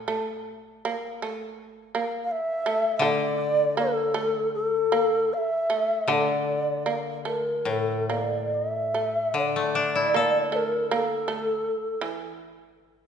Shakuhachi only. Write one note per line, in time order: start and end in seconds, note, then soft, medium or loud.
2.24 2.33 F5 medium
2.31 2.96 E5 medium
2.96 3.06 E5 medium
3.04 3.78 D5 medium
3.79 4.51 A4 medium
4.55 5.35 A4 medium
5.33 5.39 F5 medium
5.38 6.09 E5 medium
6.09 6.98 D5 medium
6.09 6.14 E5 medium
7.27 7.69 A#4 soft
7.68 8.09 A4 soft
8.09 8.56 D5 medium
8.54 9.36 E5 medium
9.37 10.57 D5 medium
10.55 10.96 A#4 medium
10.94 12.05 A4 medium